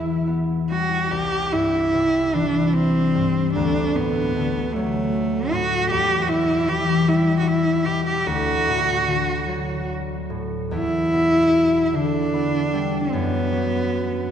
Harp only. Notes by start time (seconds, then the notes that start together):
Already playing: E2 B2 E3
0.27 B3
0.70 G3
1.11 C2
1.52 G2
1.94 C3
2.34 E3
3.15 G2
3.56 D2
3.96 A2
4.36 D3
4.76 F#3
5.52 A2
5.92 E2
6.30 B2
6.68 E3
7.08 G3
7.86 B2
8.26 D2
8.66 A2
9.06 D3
9.47 F#3
10.30 A2
10.71 E2
11.13 B2
11.93 D3
12.33 B3
12.73 G3
13.13 F#2
13.52 F#3